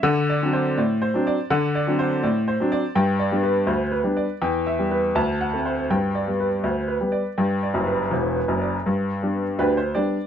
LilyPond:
<<
  \new Staff \with { instrumentName = "Upright piano" } { \time 2/4 \key g \major \tempo 4 = 82 \tuplet 3/2 { fis''8 d''8 c''8 d''8 c''8 d''8 } | \tuplet 3/2 { fis''8 d''8 c''8 d''8 c''8 d''8 } | \tuplet 3/2 { g''8 d''8 b'8 c''8 b'8 d''8 } | \tuplet 3/2 { g''8 e''8 b'8 a''8 fis''8 c''8 } |
\tuplet 3/2 { g''8 d''8 b'8 c''8 b'8 d''8 } | \tuplet 3/2 { g''8 d''8 b'8 c''8 b'8 d''8 } | r4 <d' g' b'>16 c''16 d''8 | }
  \new Staff \with { instrumentName = "Upright piano" } { \clef bass \time 2/4 \key g \major d8 <fis c' d'>8 a,8 <fis c' d'>8 | d8 <fis c' d'>8 a,8 <fis c' d'>8 | g,8 <g b d'>8 d,8 <g b d'>8 | e,8 <g b>8 d,8 <a c'>8 |
g,8 <g b>8 d,8 <g b>8 | g,8 <fis,, fis,>8 <e,, e,>8 <fis,, fis,>8 | g,8 <g b d'>8 d,8 <g b d'>8 | }
>>